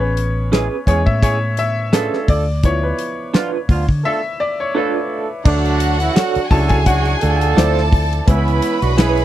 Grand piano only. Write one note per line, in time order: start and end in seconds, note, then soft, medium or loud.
0.00 0.86 B3 medium
0.00 0.86 C#4 medium
0.00 2.24 G#4 medium
0.00 0.33 B4 medium
0.87 1.19 G#3 soft
0.87 1.19 B3 soft
0.87 1.19 C#4 medium
0.87 1.07 C#5 medium
1.06 1.23 E5 medium
1.23 1.59 C#5 loud
1.59 2.31 E5 loud
2.29 2.65 D5 medium
2.64 5.42 F3 medium
2.64 5.42 B3 medium
2.64 5.42 E4 medium
2.64 2.82 C#5 medium
2.83 3.16 B4 medium
4.05 4.41 E5 loud
4.40 4.58 D5 medium
4.60 4.76 C#5 medium
4.76 5.08 B4 medium
6.51 7.53 F#3 medium
6.51 7.53 C#4 medium
6.51 7.53 E4 medium
6.51 6.71 A5 loud
6.69 6.87 G#5 medium
6.86 7.59 F#5 loud
7.57 8.24 F3 medium
7.57 8.24 C4 medium
7.57 8.25 E4 medium
7.57 8.08 D5 medium
8.27 9.25 G#3 medium
8.27 9.25 B3 medium
8.27 9.25 E4 medium